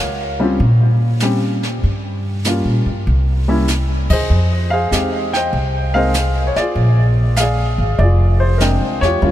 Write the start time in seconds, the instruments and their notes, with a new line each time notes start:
Already playing: upright bass C#2, grand piano F4 G4 A#4 C#5 F5
0.40 grand piano G3 C4 C#4 F4
0.59 upright bass A#2, brush sweep
1.20 grand piano G3 C4 C#4 G4, snare, hi-hat pedal
1.63 snare
1.83 upright bass G2, brush sweep
2.44 grand piano G3 A#3 C#4 F4, snare, hi-hat pedal
2.65 upright bass A#2
2.86 upright bass G2
3.07 upright bass C2, brush sweep
3.48 grand piano G3 A#3 C#4 E4
3.68 snare, hi-hat pedal
4.10 upright bass C3, grand piano G#4 C5 D#5, kick, ride
4.30 upright bass F2, brush sweep
4.70 grand piano G#4 C5 F5
4.91 upright bass E2, grand piano G#3 C4 D#4 G4, snare, hi-hat pedal
5.33 grand piano C5 D#5 G5, snare
5.53 upright bass C2, brush sweep
5.94 grand piano G#3 C4 D#4 G#4 A#4 C5 F5
6.14 snare, hi-hat pedal
6.47 grand piano C#5
6.56 grand piano F4 G#4 D5, muted upright bass stroke, snare
6.75 upright bass A#1, brush sweep
7.37 grand piano G#4 F5, snare, hi-hat pedal
7.41 grand piano D5
7.78 upright bass G#1
7.99 upright bass F1, grand piano F4 G#4 D5, brush sweep
8.40 grand piano C5
8.58 grand piano C3 G#3 D4 A#4 G5, snare, hi-hat pedal
8.81 upright bass C2
9.01 upright bass E2, grand piano F4 G4 C#5, snare
9.22 upright bass D#2, grand piano G3 A#3 C#4 F4, brush sweep